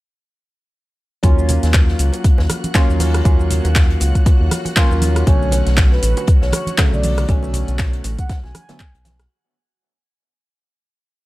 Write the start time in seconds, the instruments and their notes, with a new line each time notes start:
1.23 analog synth bass D#2, synth stab F#3 A#3 C#4 F4, string machine F#4 F#6, kick, closed hi-hat, low conga, shaker
1.39 shaker
1.49 closed hi-hat, open hi-hat, high bongo, low conga, shaker
1.63 analog synth bass D#2, snare, closed hi-hat, shaker
1.74 kick, snare, clap, closed hi-hat, high bongo, shaker
1.88 snare
1.99 analog synth bass C#2, closed hi-hat, open hi-hat, shaker
2.13 closed hi-hat, high bongo, shaker
2.24 kick, closed hi-hat, shaker
2.38 analog synth bass D#2, snare, high bongo
2.50 cross-stick, closed hi-hat, open hi-hat, high conga, shaker
2.64 closed hi-hat, high conga, shaker
2.74 synth stab F#3 A#3 C#4 F4, kick, snare, clap, closed hi-hat, high bongo, shaker
2.89 analog synth bass D#2, shaker
2.99 open hi-hat, high bongo, high conga, shaker
3.14 cross-stick, closed hi-hat, shaker
3.25 analog synth bass D#2, synth stab F#3 A#3 C#4 F4, kick, closed hi-hat, low conga, shaker
3.39 high bongo, shaker
3.51 closed hi-hat, open hi-hat, low conga, shaker
3.65 analog synth bass D#2, closed hi-hat, high bongo, shaker
3.75 kick, snare, clap, closed hi-hat, shaker
3.90 closed hi-hat
4.00 analog synth bass C#2, closed hi-hat, open hi-hat, high bongo, shaker
4.15 kick, closed hi-hat, shaker
4.26 kick, closed hi-hat, high bongo, shaker
4.40 analog synth bass D#2
4.51 cross-stick, closed hi-hat, open hi-hat, high conga, shaker
4.65 open hi-hat, high bongo, high conga, shaker
4.76 synth stab F#3 A#3 C#4 F4, kick, snare, clap, closed hi-hat, shaker
4.91 analog synth bass D#2, high bongo, shaker
5.02 closed hi-hat, open hi-hat, high conga, shaker
5.16 cross-stick, closed hi-hat, shaker
5.26 analog synth bass B1, synth stab D3 F#3 A3 C#4, soft synth lead C#5, kick, closed hi-hat, high bongo, low conga, shaker
5.42 shaker
5.51 closed hi-hat, open hi-hat, high bongo, low conga, shaker
5.66 analog synth bass B1, snare, closed hi-hat, shaker
5.77 kick, snare, clap, closed hi-hat, shaker
5.92 soft synth lead B4, snare, high bongo
6.03 analog synth bass A1, closed hi-hat, open hi-hat, shaker
6.17 closed hi-hat, high bongo, shaker
6.27 kick, closed hi-hat, shaker
6.42 analog synth bass B1, soft synth lead C#5, snare
6.52 cross-stick, closed hi-hat, open hi-hat, high bongo, high conga, shaker
6.67 closed hi-hat, high conga, shaker
6.78 synth stab C#3 D3 F#3 A3, kick, snare, clap, closed hi-hat, high bongo, shaker
6.92 analog synth bass B1, soft synth lead D5, shaker
7.03 open hi-hat, high conga, shaker
7.18 cross-stick, closed hi-hat, high bongo, shaker
7.28 analog synth bass B1, synth stab D3 F#3 A3 C#4, kick, closed hi-hat, low conga, shaker
7.43 high bongo, shaker
7.53 closed hi-hat, open hi-hat, low conga, shaker
7.68 analog synth bass B1, closed hi-hat, shaker
7.79 kick, snare, clap, closed hi-hat, high bongo, shaker
7.93 closed hi-hat
8.04 analog synth bass A1, closed hi-hat, open hi-hat, high bongo, shaker
8.19 soft synth lead F#5, kick, closed hi-hat, shaker
8.29 kick, snare, closed hi-hat, shaker
8.44 analog synth bass B1, soft synth lead G#5, snare, high bongo
8.55 cross-stick, closed hi-hat, open hi-hat, high conga, shaker
8.69 synth stab D3 F#3 A3 B3, snare, closed hi-hat, open hi-hat, high bongo, high conga, shaker
8.80 kick, clap, closed hi-hat, shaker
8.94 analog synth bass B1, closed hi-hat, shaker
9.05 snare, closed hi-hat, open hi-hat, high bongo, high conga, shaker
9.20 cross-stick, snare, closed hi-hat, shaker